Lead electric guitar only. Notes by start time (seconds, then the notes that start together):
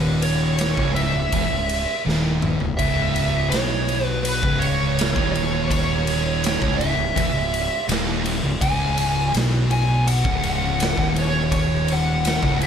Already playing: B4
0.22 C#5
0.95 E5
2.77 E5
3.50 C#5
4.07 B4
4.23 B4
4.59 C#5
5.32 C#5
5.69 C#5
6.77 E5
8.61 G#5
9.71 G#5
10.07 F#5
11.19 C#5
11.55 C#5
11.93 F#5